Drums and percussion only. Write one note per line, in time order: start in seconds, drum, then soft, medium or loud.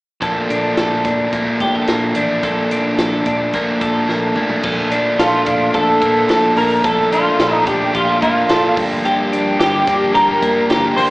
0.22 kick medium
0.22 closed hi-hat medium
0.50 closed hi-hat medium
0.77 snare medium
0.77 closed hi-hat medium
1.05 kick medium
1.05 snare soft
1.05 closed hi-hat medium
1.32 kick medium
1.32 closed hi-hat medium
1.60 kick medium
1.60 closed hi-hat medium
1.87 snare medium
1.87 closed hi-hat medium
2.15 closed hi-hat medium
2.43 kick medium
2.43 closed hi-hat medium
2.71 closed hi-hat medium
2.98 snare loud
2.98 closed hi-hat medium
3.26 kick medium
3.26 closed hi-hat medium
3.53 kick medium
3.53 closed hi-hat medium
3.81 kick medium
3.81 closed hi-hat medium
4.09 snare soft
4.36 mid tom medium
4.50 floor tom medium
4.63 kick loud
4.63 crash medium
4.91 closed hi-hat medium
5.19 snare loud
5.19 closed hi-hat medium
5.46 kick medium
5.46 snare soft
5.46 closed hi-hat medium
5.74 kick medium
5.74 closed hi-hat medium
6.02 kick medium
6.02 closed hi-hat medium
6.29 snare medium
6.29 closed hi-hat medium
6.56 open hi-hat medium
6.84 kick loud
6.84 closed hi-hat medium
7.12 closed hi-hat medium
7.39 snare loud
7.39 closed hi-hat medium
7.67 kick medium
7.67 closed hi-hat medium
7.94 kick medium
7.94 closed hi-hat medium
8.22 kick medium
8.22 closed hi-hat medium
8.49 snare loud
8.49 closed hi-hat medium
8.77 kick medium
8.77 open hi-hat medium
9.05 closed hi-hat medium
9.33 closed hi-hat medium
9.60 snare loud
9.60 closed hi-hat medium
9.87 kick medium
9.87 snare soft
9.87 closed hi-hat medium
10.15 kick medium
10.15 closed hi-hat medium
10.43 kick medium
10.43 closed hi-hat medium
10.70 snare loud
10.70 closed hi-hat medium
10.97 open hi-hat medium